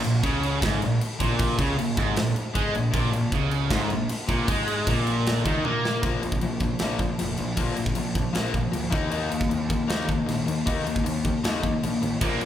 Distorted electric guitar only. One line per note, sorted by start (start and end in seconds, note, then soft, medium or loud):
0.03 0.19 A#2 medium
0.23 0.61 C#3 loud
0.61 0.80 G#2 loud
0.82 0.97 A#2 medium
1.20 1.58 A#2 loud
1.60 1.78 C#3 loud
1.78 1.94 A#2 medium
1.98 2.16 G#2 loud
2.17 2.32 A#2 medium
2.55 2.74 G#3 loud
2.75 2.90 A#2 medium
2.94 3.13 A#2 loud
3.14 3.29 A#2 medium
3.34 3.72 C#3 loud
3.71 3.90 G#2 loud
3.91 4.06 A#2 medium
4.29 4.48 A#2 loud
4.49 4.87 G#3 loud
4.88 5.45 A#2 loud
5.45 5.64 D#3 loud
5.65 6.03 A#3 loud
12.21 12.40 A#2 medium
12.21 12.40 F3 medium
12.21 12.40 A#3 medium
12.42 12.45 A#2 medium
12.42 12.45 F3 medium